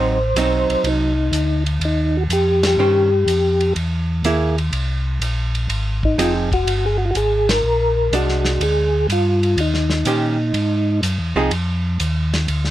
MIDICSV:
0, 0, Header, 1, 5, 480
1, 0, Start_track
1, 0, Tempo, 485044
1, 1794, Time_signature, 4, 2, 24, 8
1, 12574, End_track
2, 0, Start_track
2, 0, Title_t, "Tonewheel organ"
2, 0, Program_c, 0, 16
2, 0, Note_on_c, 0, 72, 84
2, 860, Note_on_c, 0, 63, 69
2, 878, Note_off_c, 0, 72, 0
2, 1618, Note_off_c, 0, 63, 0
2, 1831, Note_on_c, 0, 63, 77
2, 2147, Note_on_c, 0, 66, 94
2, 2153, Note_off_c, 0, 63, 0
2, 2209, Note_off_c, 0, 66, 0
2, 2305, Note_on_c, 0, 67, 94
2, 2630, Note_off_c, 0, 67, 0
2, 2643, Note_on_c, 0, 67, 93
2, 3694, Note_off_c, 0, 67, 0
2, 5988, Note_on_c, 0, 63, 79
2, 6125, Note_on_c, 0, 65, 77
2, 6131, Note_off_c, 0, 63, 0
2, 6272, Note_off_c, 0, 65, 0
2, 6468, Note_on_c, 0, 66, 104
2, 6780, Note_off_c, 0, 66, 0
2, 6787, Note_on_c, 0, 68, 77
2, 6898, Note_off_c, 0, 68, 0
2, 6907, Note_on_c, 0, 66, 77
2, 6975, Note_off_c, 0, 66, 0
2, 6983, Note_on_c, 0, 65, 77
2, 7030, Note_off_c, 0, 65, 0
2, 7033, Note_on_c, 0, 66, 73
2, 7083, Note_off_c, 0, 66, 0
2, 7095, Note_on_c, 0, 68, 93
2, 7424, Note_on_c, 0, 70, 104
2, 7426, Note_off_c, 0, 68, 0
2, 8063, Note_off_c, 0, 70, 0
2, 8065, Note_on_c, 0, 66, 86
2, 8537, Note_on_c, 0, 68, 86
2, 8545, Note_off_c, 0, 66, 0
2, 8974, Note_off_c, 0, 68, 0
2, 9029, Note_on_c, 0, 65, 84
2, 9505, Note_on_c, 0, 63, 70
2, 9507, Note_off_c, 0, 65, 0
2, 10891, Note_off_c, 0, 63, 0
2, 12574, End_track
3, 0, Start_track
3, 0, Title_t, "Hollow-body jazz guitar"
3, 0, Program_c, 1, 26
3, 0, Note_on_c, 1, 54, 53
3, 0, Note_on_c, 1, 60, 60
3, 0, Note_on_c, 1, 63, 62
3, 169, Note_off_c, 1, 54, 0
3, 173, Note_off_c, 1, 60, 0
3, 176, Note_off_c, 1, 63, 0
3, 361, Note_on_c, 1, 54, 59
3, 369, Note_on_c, 1, 60, 52
3, 374, Note_on_c, 1, 63, 61
3, 1102, Note_off_c, 1, 54, 0
3, 1106, Note_off_c, 1, 60, 0
3, 1109, Note_off_c, 1, 63, 0
3, 2761, Note_on_c, 1, 51, 57
3, 2766, Note_on_c, 1, 61, 58
3, 2770, Note_on_c, 1, 67, 59
3, 2771, Note_on_c, 1, 72, 63
3, 3056, Note_off_c, 1, 51, 0
3, 3058, Note_off_c, 1, 61, 0
3, 3060, Note_off_c, 1, 67, 0
3, 3061, Note_off_c, 1, 72, 0
3, 4206, Note_on_c, 1, 58, 65
3, 4212, Note_on_c, 1, 64, 69
3, 4219, Note_on_c, 1, 68, 73
3, 4499, Note_off_c, 1, 58, 0
3, 4502, Note_off_c, 1, 64, 0
3, 4505, Note_off_c, 1, 68, 0
3, 6119, Note_on_c, 1, 53, 53
3, 6123, Note_on_c, 1, 60, 57
3, 6127, Note_on_c, 1, 63, 56
3, 6127, Note_on_c, 1, 68, 53
3, 6415, Note_off_c, 1, 53, 0
3, 6418, Note_off_c, 1, 60, 0
3, 6419, Note_off_c, 1, 63, 0
3, 6419, Note_off_c, 1, 68, 0
3, 8045, Note_on_c, 1, 56, 51
3, 8049, Note_on_c, 1, 62, 59
3, 8785, Note_off_c, 1, 56, 0
3, 8787, Note_off_c, 1, 62, 0
3, 9959, Note_on_c, 1, 51, 55
3, 9964, Note_on_c, 1, 61, 56
3, 9967, Note_on_c, 1, 67, 56
3, 9968, Note_on_c, 1, 72, 54
3, 10255, Note_off_c, 1, 51, 0
3, 10258, Note_off_c, 1, 61, 0
3, 10259, Note_off_c, 1, 67, 0
3, 10260, Note_off_c, 1, 72, 0
3, 11242, Note_on_c, 1, 53, 72
3, 11242, Note_on_c, 1, 60, 66
3, 11250, Note_on_c, 1, 63, 71
3, 11252, Note_on_c, 1, 68, 77
3, 11379, Note_off_c, 1, 53, 0
3, 11379, Note_off_c, 1, 60, 0
3, 11382, Note_off_c, 1, 63, 0
3, 11383, Note_off_c, 1, 68, 0
3, 12574, End_track
4, 0, Start_track
4, 0, Title_t, "Tonewheel organ"
4, 0, Program_c, 2, 16
4, 0, Note_on_c, 2, 33, 82
4, 340, Note_off_c, 2, 33, 0
4, 350, Note_on_c, 2, 35, 86
4, 659, Note_off_c, 2, 35, 0
4, 678, Note_on_c, 2, 35, 36
4, 754, Note_off_c, 2, 35, 0
4, 826, Note_on_c, 2, 36, 82
4, 1295, Note_off_c, 2, 36, 0
4, 1304, Note_on_c, 2, 38, 82
4, 1775, Note_off_c, 2, 38, 0
4, 1782, Note_on_c, 2, 39, 85
4, 2254, Note_off_c, 2, 39, 0
4, 2266, Note_on_c, 2, 41, 87
4, 2736, Note_off_c, 2, 41, 0
4, 2745, Note_on_c, 2, 43, 81
4, 3215, Note_off_c, 2, 43, 0
4, 3230, Note_on_c, 2, 41, 85
4, 3698, Note_off_c, 2, 41, 0
4, 3713, Note_on_c, 2, 40, 80
4, 4180, Note_off_c, 2, 40, 0
4, 4189, Note_on_c, 2, 39, 82
4, 4658, Note_off_c, 2, 39, 0
4, 4669, Note_on_c, 2, 36, 77
4, 5138, Note_off_c, 2, 36, 0
4, 5145, Note_on_c, 2, 34, 81
4, 5616, Note_off_c, 2, 34, 0
4, 5624, Note_on_c, 2, 32, 81
4, 6096, Note_off_c, 2, 32, 0
4, 6103, Note_on_c, 2, 29, 78
4, 6575, Note_off_c, 2, 29, 0
4, 6582, Note_on_c, 2, 31, 83
4, 7055, Note_off_c, 2, 31, 0
4, 7071, Note_on_c, 2, 32, 85
4, 7539, Note_off_c, 2, 32, 0
4, 7549, Note_on_c, 2, 34, 81
4, 8018, Note_off_c, 2, 34, 0
4, 8028, Note_on_c, 2, 36, 82
4, 8498, Note_off_c, 2, 36, 0
4, 8508, Note_on_c, 2, 38, 81
4, 8978, Note_off_c, 2, 38, 0
4, 8991, Note_on_c, 2, 43, 87
4, 9459, Note_off_c, 2, 43, 0
4, 9469, Note_on_c, 2, 39, 84
4, 9938, Note_off_c, 2, 39, 0
4, 9946, Note_on_c, 2, 46, 80
4, 10416, Note_off_c, 2, 46, 0
4, 10426, Note_on_c, 2, 44, 80
4, 10896, Note_off_c, 2, 44, 0
4, 10910, Note_on_c, 2, 42, 86
4, 11067, Note_on_c, 2, 40, 54
4, 11068, Note_off_c, 2, 42, 0
4, 11225, Note_on_c, 2, 36, 61
4, 11232, Note_off_c, 2, 40, 0
4, 11379, Note_off_c, 2, 36, 0
4, 11387, Note_on_c, 2, 41, 82
4, 11857, Note_off_c, 2, 41, 0
4, 11873, Note_on_c, 2, 39, 91
4, 12340, Note_off_c, 2, 39, 0
4, 12351, Note_on_c, 2, 38, 78
4, 12574, Note_off_c, 2, 38, 0
4, 12574, End_track
5, 0, Start_track
5, 0, Title_t, "Drums"
5, 359, Note_on_c, 9, 44, 53
5, 359, Note_on_c, 9, 51, 62
5, 458, Note_off_c, 9, 44, 0
5, 458, Note_off_c, 9, 51, 0
5, 691, Note_on_c, 9, 51, 46
5, 790, Note_off_c, 9, 51, 0
5, 835, Note_on_c, 9, 51, 58
5, 934, Note_off_c, 9, 51, 0
5, 1314, Note_on_c, 9, 44, 55
5, 1314, Note_on_c, 9, 51, 65
5, 1413, Note_off_c, 9, 44, 0
5, 1413, Note_off_c, 9, 51, 0
5, 1647, Note_on_c, 9, 51, 46
5, 1746, Note_off_c, 9, 51, 0
5, 1794, Note_on_c, 9, 51, 59
5, 1893, Note_off_c, 9, 51, 0
5, 2277, Note_on_c, 9, 44, 56
5, 2277, Note_on_c, 9, 51, 63
5, 2376, Note_off_c, 9, 44, 0
5, 2376, Note_off_c, 9, 51, 0
5, 2606, Note_on_c, 9, 38, 74
5, 2606, Note_on_c, 9, 51, 66
5, 2705, Note_off_c, 9, 38, 0
5, 2705, Note_off_c, 9, 51, 0
5, 3243, Note_on_c, 9, 44, 48
5, 3243, Note_on_c, 9, 51, 64
5, 3342, Note_off_c, 9, 44, 0
5, 3342, Note_off_c, 9, 51, 0
5, 3567, Note_on_c, 9, 51, 42
5, 3666, Note_off_c, 9, 51, 0
5, 3720, Note_on_c, 9, 51, 59
5, 3819, Note_off_c, 9, 51, 0
5, 4199, Note_on_c, 9, 44, 43
5, 4199, Note_on_c, 9, 51, 62
5, 4298, Note_off_c, 9, 44, 0
5, 4298, Note_off_c, 9, 51, 0
5, 4534, Note_on_c, 9, 51, 44
5, 4633, Note_off_c, 9, 51, 0
5, 4677, Note_on_c, 9, 51, 62
5, 4776, Note_off_c, 9, 51, 0
5, 5162, Note_on_c, 9, 44, 58
5, 5162, Note_on_c, 9, 51, 62
5, 5261, Note_off_c, 9, 44, 0
5, 5261, Note_off_c, 9, 51, 0
5, 5490, Note_on_c, 9, 51, 42
5, 5589, Note_off_c, 9, 51, 0
5, 5637, Note_on_c, 9, 51, 59
5, 5736, Note_off_c, 9, 51, 0
5, 5970, Note_on_c, 9, 36, 45
5, 6069, Note_off_c, 9, 36, 0
5, 6125, Note_on_c, 9, 44, 61
5, 6125, Note_on_c, 9, 51, 66
5, 6224, Note_off_c, 9, 44, 0
5, 6224, Note_off_c, 9, 51, 0
5, 6451, Note_on_c, 9, 36, 43
5, 6457, Note_on_c, 9, 51, 44
5, 6549, Note_off_c, 9, 36, 0
5, 6556, Note_off_c, 9, 51, 0
5, 6606, Note_on_c, 9, 51, 65
5, 6705, Note_off_c, 9, 51, 0
5, 7076, Note_on_c, 9, 44, 53
5, 7076, Note_on_c, 9, 51, 61
5, 7175, Note_off_c, 9, 44, 0
5, 7175, Note_off_c, 9, 51, 0
5, 7413, Note_on_c, 9, 38, 79
5, 7413, Note_on_c, 9, 51, 62
5, 7512, Note_off_c, 9, 38, 0
5, 7512, Note_off_c, 9, 51, 0
5, 8043, Note_on_c, 9, 44, 46
5, 8043, Note_on_c, 9, 51, 61
5, 8142, Note_off_c, 9, 44, 0
5, 8142, Note_off_c, 9, 51, 0
5, 8201, Note_on_c, 9, 38, 26
5, 8299, Note_off_c, 9, 38, 0
5, 8358, Note_on_c, 9, 38, 46
5, 8371, Note_on_c, 9, 51, 44
5, 8457, Note_off_c, 9, 38, 0
5, 8470, Note_off_c, 9, 51, 0
5, 8519, Note_on_c, 9, 51, 63
5, 8618, Note_off_c, 9, 51, 0
5, 9002, Note_on_c, 9, 44, 48
5, 9002, Note_on_c, 9, 51, 68
5, 9101, Note_off_c, 9, 44, 0
5, 9101, Note_off_c, 9, 51, 0
5, 9333, Note_on_c, 9, 51, 42
5, 9431, Note_off_c, 9, 51, 0
5, 9478, Note_on_c, 9, 51, 64
5, 9577, Note_off_c, 9, 51, 0
5, 9638, Note_on_c, 9, 38, 29
5, 9737, Note_off_c, 9, 38, 0
5, 9793, Note_on_c, 9, 38, 44
5, 9892, Note_off_c, 9, 38, 0
5, 9948, Note_on_c, 9, 44, 54
5, 9948, Note_on_c, 9, 51, 64
5, 10047, Note_off_c, 9, 44, 0
5, 10047, Note_off_c, 9, 51, 0
5, 10431, Note_on_c, 9, 51, 55
5, 10530, Note_off_c, 9, 51, 0
5, 10915, Note_on_c, 9, 44, 62
5, 10915, Note_on_c, 9, 51, 66
5, 11014, Note_off_c, 9, 44, 0
5, 11014, Note_off_c, 9, 51, 0
5, 11392, Note_on_c, 9, 51, 60
5, 11491, Note_off_c, 9, 51, 0
5, 11872, Note_on_c, 9, 44, 53
5, 11872, Note_on_c, 9, 51, 63
5, 11971, Note_off_c, 9, 44, 0
5, 11971, Note_off_c, 9, 51, 0
5, 12207, Note_on_c, 9, 38, 46
5, 12207, Note_on_c, 9, 51, 45
5, 12306, Note_off_c, 9, 38, 0
5, 12306, Note_off_c, 9, 51, 0
5, 12352, Note_on_c, 9, 51, 59
5, 12451, Note_off_c, 9, 51, 0
5, 12513, Note_on_c, 9, 38, 29
5, 12574, Note_off_c, 9, 38, 0
5, 12574, End_track
0, 0, End_of_file